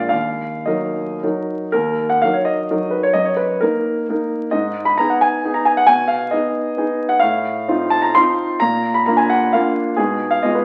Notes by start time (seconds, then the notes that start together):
Already playing: A#1 G#3 F4 A#4 D5 F5
0.09 D#2 F5
0.66 F#3 D#4 A#4 D#5
1.23 F#3 D#4 A#4
1.72 D#2 A#4
2.10 F#5
2.22 F#3 D#4 A#4 F5
2.33 C#5
2.45 D#5
2.70 F#3 D#4 A#4
2.91 B4
3.03 C#5
3.13 F#2 D#5
3.25 C#5
3.37 B4
3.61 A#3 D#4 A#4
4.09 A#3 D#4 A#4
4.51 G#2 D#5
4.85 B5
4.98 B3 D#4 G#4 A#5
5.10 F#5
5.21 G#5
5.44 B3 D#4 G#4
5.54 A#5
5.65 G#5
5.77 F#5
5.87 B2 G#5
6.08 F5
6.31 B3 D#4 G#4 D#5
6.77 B3 D#4 G#4
7.09 F#5
7.20 A2 F5
7.68 C4 D#4 F4
7.90 A5
8.02 A#5
8.15 C4 D#4 F4 C6
8.60 A#2 A#5
8.94 B5
9.06 A#3 D4 F4 A#5
9.17 G#5
9.30 F#5
9.53 A#3 D4 F4 F5
9.96 B2 G#3 D#4 G#4
10.31 F5
10.43 B2 G#3 F4 G#4 D#5
10.55 B4